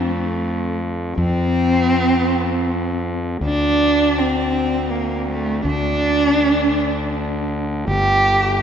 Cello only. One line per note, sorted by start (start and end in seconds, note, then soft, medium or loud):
0.07 0.77 A3 medium
1.17 3.00 C4 loud
3.45 4.19 D4 medium
4.18 4.92 C4 medium
4.91 5.28 A#3 medium
5.29 5.63 A3 medium
5.65 7.47 D4 medium
7.88 8.62 G4 medium